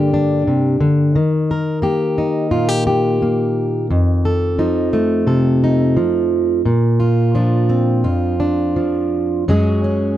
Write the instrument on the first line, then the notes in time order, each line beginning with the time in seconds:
steel-string acoustic guitar
Already playing: G2 D3 G3 A#3 D4 G4
0.14 D4
0.47 C3
0.81 D3
1.16 D#3
1.51 A#4
1.82 A#3 G4
2.18 D#4
2.51 A#2 F4
2.69 G4
2.87 G4
3.22 A#3
3.90 F2
4.25 A4
4.59 F3 D#4
4.93 A3
5.27 C3 A4
5.64 D#4
5.97 F3
6.65 A#2
7.00 F4
7.35 F3 D4
7.69 C4
8.04 F2 F4
8.40 D4
8.76 F3
9.48 F#2 F#3 G#3 C#4 G#4
9.84 C#4